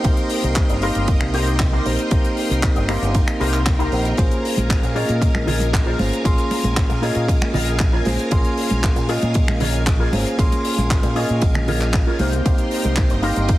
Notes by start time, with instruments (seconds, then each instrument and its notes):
Already playing: string machine A#4 D#5 G5 C6
0.04 fingered electric bass C2, tine electric piano A#3 C4 D#4 G4 C5, kick, closed hi-hat, ride
0.17 closed hi-hat
0.29 open hi-hat
0.44 fingered electric bass C2, closed hi-hat
0.55 kick, clap, closed hi-hat, ride
0.69 fingered electric bass G1, muted clean electric guitar stroke, closed hi-hat
0.81 tine electric piano A#3 C4 D#4 G4 F5, clean electric guitar D#4 G4 A#4 C5, open hi-hat
0.95 fingered electric bass G1, closed hi-hat
1.08 kick, closed hi-hat, ride
1.21 fingered electric bass C2, finger snap
1.34 clean electric guitar D#4 G4 A#4 C5, open hi-hat
1.47 closed hi-hat
1.59 kick, clap, closed hi-hat, ride
1.72 clean electric guitar D#4 G4 A#4 C5
1.85 fingered electric bass A#1, tine electric piano A#3 C4 D#4 G4 C5, open hi-hat
1.98 muted clean electric guitar stroke, closed hi-hat
2.10 fingered electric bass C2, tine electric piano A#3 C4 D#4 G4 C5, kick, closed hi-hat, ride
2.24 closed hi-hat
2.37 open hi-hat
2.51 fingered electric bass C2, closed hi-hat
2.63 finger snap, kick, clap, closed hi-hat, ride
2.75 fingered electric bass G1, muted clean electric guitar stroke, closed hi-hat
2.88 tine electric piano A#3 C4 D#4 G4 F5, clean electric guitar D#4 G4 A#4 C5, finger snap, open hi-hat
3.02 fingered electric bass G1, closed hi-hat
3.14 kick, closed hi-hat, ride
3.28 finger snap, closed hi-hat
3.40 fingered electric bass C2, clean electric guitar D#4 G4 A#4 C5, open hi-hat
3.54 clap, closed hi-hat
3.66 kick, clap, closed hi-hat, ride
3.79 fingered electric bass C2, clean electric guitar D#4 G4 A#4 C5, closed hi-hat
3.92 fingered electric bass A#1, tine electric piano A#3 C4 D#4 G4 C5, open hi-hat
4.05 muted clean electric guitar stroke, closed hi-hat
4.17 fingered electric bass A#1, tine electric piano A#3 C#4 F4 G#4 C5, string machine F5 G#5, kick, closed hi-hat, ride, muted conga
4.31 closed hi-hat
4.45 open hi-hat
4.57 fingered electric bass A#1, closed hi-hat, high conga
4.70 kick, clap, closed hi-hat, ride, muted conga
4.82 fingered electric bass A#2, muted clean electric guitar stroke, closed hi-hat
4.95 tine electric piano A#3 C#4 F4 G#4 D#5, clean electric guitar F4 G#4 A#4 C#5, open hi-hat
5.09 fingered electric bass A#2, closed hi-hat, muted conga
5.22 kick, closed hi-hat, ride
5.35 fingered electric bass A#1, finger snap, high conga
5.47 clean electric guitar F4 G#4 A#4 C#5, open hi-hat, low conga
5.60 closed hi-hat, muted conga
5.73 kick, clap, closed hi-hat, ride
5.86 clean electric guitar F4 G#4 A#4 C5
5.99 fingered electric bass G#1, tine electric piano A#3 C#4 F4 G#4 C5, open hi-hat, muted conga, high conga
6.12 muted clean electric guitar stroke, closed hi-hat
6.24 fingered electric bass A#1, tine electric piano A#3 C#4 F4 G#4 C6, kick, closed hi-hat, ride
6.38 closed hi-hat
6.51 open hi-hat, muted conga
6.64 fingered electric bass A#1, closed hi-hat, high conga
6.76 kick, clap, closed hi-hat, ride
6.89 fingered electric bass A#2, muted clean electric guitar stroke, closed hi-hat, muted conga
7.02 tine electric piano A#3 C#4 F4 G#4 D#5, clean electric guitar F4 G#4 A#4 C#5, open hi-hat
7.15 fingered electric bass A#2, closed hi-hat
7.28 kick, closed hi-hat, ride
7.42 finger snap, muted conga, high conga
7.54 fingered electric bass A#1, clean electric guitar F4 G#4 A#4 D#5, open hi-hat, low conga
7.67 closed hi-hat
7.79 kick, clap, closed hi-hat, ride, muted conga
7.93 clean electric guitar F4 G#4 A#4 C#5
8.05 fingered electric bass A#1, tine electric piano A#3 C#4 F4 G#4 C5, open hi-hat, high conga
8.19 muted clean electric guitar stroke, closed hi-hat
8.31 fingered electric bass A#1, tine electric piano A#3 C#4 F4 G#4 C6, kick, closed hi-hat, ride, muted conga
8.44 closed hi-hat
8.57 open hi-hat
8.70 fingered electric bass A#1, closed hi-hat, muted conga, high conga
8.83 kick, clap, closed hi-hat, ride
8.96 fingered electric bass A#2, muted clean electric guitar stroke, closed hi-hat
9.08 tine electric piano A#3 C#4 F4 G#4 D#5, clean electric guitar F4 G#4 A#4 C#5, open hi-hat
9.21 fingered electric bass A#2, closed hi-hat, muted conga
9.34 kick, closed hi-hat, ride
9.48 fingered electric bass A#1, finger snap, high conga
9.60 clean electric guitar F4 G#4 A#4 C#5, open hi-hat, muted conga, low conga
9.74 closed hi-hat
9.87 kick, clap, closed hi-hat, ride
9.99 clean electric guitar F4 G#4 A#4 C#5
10.12 fingered electric bass G#1, tine electric piano A#3 C#4 F4 G#4 C5, open hi-hat, muted conga, high conga
10.26 muted clean electric guitar stroke, closed hi-hat
10.38 fingered electric bass A#1, tine electric piano A#3 C#4 F4 G#4 C6, kick, closed hi-hat, ride
10.52 closed hi-hat, muted conga
10.65 open hi-hat
10.78 fingered electric bass A#1, closed hi-hat, high conga
10.90 kick, clap, closed hi-hat, ride
11.03 fingered electric bass A#2, muted clean electric guitar stroke, closed hi-hat, muted conga
11.15 tine electric piano A#3 C#4 F4 G#4 D#5, clean electric guitar F4 G#4 A#4 C#5, open hi-hat
11.29 fingered electric bass A#2, closed hi-hat
11.41 fingered electric bass A#1, kick, closed hi-hat, ride, muted conga
11.54 finger snap, high conga, low conga
11.68 clean electric guitar F4 G#4 A#4 C#5, open hi-hat, low conga
11.81 clap, closed hi-hat
11.93 kick, clap, closed hi-hat, ride, muted conga
12.07 clean electric guitar F4 G#4 A#4 C#5
12.19 fingered electric bass C2, tine electric piano A#3 C4 D#4 G4 C5, clean electric guitar D#4 G4 A#4 C5, string machine A#4 D#5 G5 C6, open hi-hat, high conga
12.32 closed hi-hat, muted conga
12.45 fingered electric bass C2, tine electric piano A#3 C4 D#4 G4 C5, kick, closed hi-hat, ride, muted conga
12.58 closed hi-hat
12.71 open hi-hat
12.84 fingered electric bass C2, closed hi-hat, high conga
12.96 kick, clap, closed hi-hat, ride, muted conga
13.10 fingered electric bass G1, muted clean electric guitar stroke, closed hi-hat
13.22 tine electric piano A#3 C4 D#4 G4 F5, clean electric guitar D#4 G4 A#4 C5, open hi-hat
13.36 fingered electric bass G1, closed hi-hat, muted conga
13.48 kick, closed hi-hat, ride